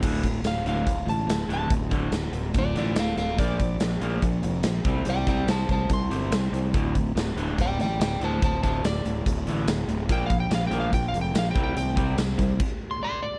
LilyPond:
<<
  \new Staff \with { instrumentName = "Electric slide guitar" } { \time 4/4 \key d \minor \tempo 4 = 143 r4 f''8 f''4 a''4 a''8 | r2 <f' d''>8 <f' d''>8 <a' f''>8 <a' f''>8 | d''2. r4 | <d'' g''>8 <d'' g''>8 <c'' a''>8 <c'' a''>8 c'''2 |
r2 <d'' g''>8 <d'' g''>8 <d'' g''>8 <c'' a''>8 | <c'' a''>8 <c'' a''>8 d''2 r4 | \tuplet 3/2 { g''8 f''8 g''8 f''8 g''8 f''8 g''8 f''8 g''8 f''8 g''8 g''8 } | g''4 r4 \tuplet 3/2 { r4 c'''8 } <d'' c'''>8 d''8 | }
  \new Staff \with { instrumentName = "Overdriven electric guitar" } { \clef bass \time 4/4 \key d \minor <d, a, d>8 <d, a,>8 <d, a,>8 <d, a, d>8 <d, a,>8 <d, a,>8 <d, a,>8 <d, a, d>8 | <d, a,>8 <d, a, d>8 <d, a,>8 <d, a,>8 <d, a,>8 <d, a, d>8 <d, a,>8 <d, a,>8 | <bes, f bes>8 <bes, f>8 <bes, f>8 <bes, f bes>8 <bes, f>8 <bes, f>8 <bes, f>8 <c g c'>8 | <c g>8 <c g c'>8 <c g>8 <c g>8 <c g>8 <c g c'>8 <c g>8 <c g>8 |
<d, a, d>8 <d, a,>8 <d, a,>8 <d, a, d>8 <d, a,>8 <d, a,>8 <d, a,>8 <d, a, d>8 | <d, a,>8 <d, a, d>8 <d, a,>8 <d, a,>8 <d, a,>8 <d, a, d>8 <d, a,>8 <d, a,>8 | <bes, f bes>8 <bes, f>8 <bes, f>8 <bes, f bes>8 <bes, f>8 <bes, f>8 <bes, f>8 <c g c'>8 | <c g>8 <c g c'>8 <c g>8 <c g>8 r2 | }
  \new Staff \with { instrumentName = "Fingered electric bass" } { \clef bass \time 4/4 \key d \minor d,,4 d,,8 d,,8 d,,8 a,,8 d,,8 d,,8 | d,,4 d,,8 d,,8 d,,8 a,,8 d,,8 d,,8 | bes,,4 bes,,8 bes,,8 bes,,8 f,,8 bes,,8 c,8 | c,4 c,8 c,8 c,8 g,,8 c,8 c,8 |
d,,4 d,,8 d,,8 d,,8 a,,8 d,,8 d,,8 | d,,4 d,,8 d,,8 d,,8 a,,8 d,,8 d,,8 | bes,,4 bes,,8 bes,,8 bes,,8 f,,8 bes,,8 c,8 | c,4 c,8 c,8 r2 | }
  \new DrumStaff \with { instrumentName = "Drums" } \drummode { \time 4/4 <cymc bd>8 <hh bd>8 <hh sn tamb>8 hh8 <hh bd>8 hh8 <hh sn tamb>8 hh8 | <hh bd>8 <hh bd>8 <hh sn tamb>8 hh8 <hh bd>8 hh8 <hh sn tamb>8 hh8 | <hh bd>8 <hh bd>8 <hh sn tamb>8 hh8 <hh bd>8 hh8 <hh sn tamb>8 <hh bd>8 | hh8 <hh bd>8 <hh sn tamb>8 <hh bd>8 <hh bd>8 hh8 <hh sn tamb>8 hh8 |
<hh bd>8 <hh bd>8 <hh sn tamb>8 hh8 <hh bd>8 hh8 <hh sn tamb>8 hh8 | <hh bd>8 <hh bd>8 <hh sn tamb>8 hh8 <hh bd>8 hh8 <hh sn tamb>8 hh8 | <hh bd>8 <hh bd>8 <hh sn tamb>8 hh8 <hh bd>8 hh8 <hh sn tamb>8 <hh bd>8 | hh8 <hh bd>8 <hh sn tamb>8 <hh bd>8 <cymc bd>4 r4 | }
>>